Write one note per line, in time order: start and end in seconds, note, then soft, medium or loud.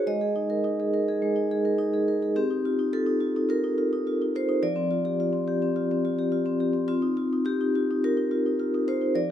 0.07 1.18 G#3 medium
0.07 2.37 D#5 medium
0.21 0.44 G#4 soft
0.36 0.58 D#4 medium
0.50 0.73 A#4 medium
0.64 0.87 D#4 medium
0.80 1.02 G#4 soft
0.94 1.16 A#4 medium
1.08 1.31 G#4 soft
1.22 2.33 G#3 medium
1.36 1.59 D#4 medium
1.51 1.74 G#4 soft
1.65 1.88 A#4 soft
1.78 2.02 D#4 medium
1.94 2.16 G#4 medium
2.08 2.31 A#4 medium
2.22 2.36 G#4 soft
2.36 3.47 C4 medium
2.36 2.93 G4 medium
2.51 2.73 D#4 soft
2.65 2.88 F4 medium
2.79 3.02 D#4 medium
2.93 3.16 F4 medium
2.93 3.50 A4 medium
3.06 3.30 D#4 medium
3.20 3.44 F4 medium
3.36 3.59 D#4 medium
3.49 3.72 F4 medium
3.49 4.35 A#4 medium
3.64 3.87 D#4 medium
3.78 4.01 F4 medium
3.93 4.15 D#4 medium
4.07 4.30 F4 medium
4.22 4.44 D#4 medium
4.36 4.58 F4 medium
4.36 4.64 C5 medium
4.49 4.63 D#4 medium
4.63 5.73 F3 medium
4.63 6.89 D5 medium
4.76 4.99 C4 medium
4.91 5.14 F4 medium
5.05 5.28 G4 medium
5.20 5.43 F4 medium
5.33 5.56 C4 soft
5.48 5.71 G4 medium
5.62 5.85 C4 medium
5.76 5.99 F4 medium
5.91 6.13 C4 medium
6.05 6.27 F4 medium
6.19 6.41 G4 medium
6.32 6.55 F4 medium
6.46 6.69 C4 medium
6.60 6.83 G4 medium
6.73 6.87 C4 medium
6.88 7.98 C4 medium
6.88 7.16 F4 medium
7.02 7.25 D#4 medium
7.17 7.40 F4 medium
7.33 7.55 D#4 medium
7.45 7.68 F4 medium
7.45 8.02 G4 medium
7.61 7.83 D#4 medium
7.75 7.97 F4 medium
7.91 8.12 D#4 medium
8.04 8.26 F4 medium
8.04 8.88 A#4 medium
8.17 8.39 D#4 medium
8.31 8.53 F4 medium
8.46 8.68 D#4 soft
8.59 8.82 F4 medium
8.74 8.96 D#4 medium
8.88 9.10 F4 medium
8.88 9.16 C5 medium
9.01 9.15 D#4 soft
9.15 9.31 F3 medium
9.15 9.31 D5 medium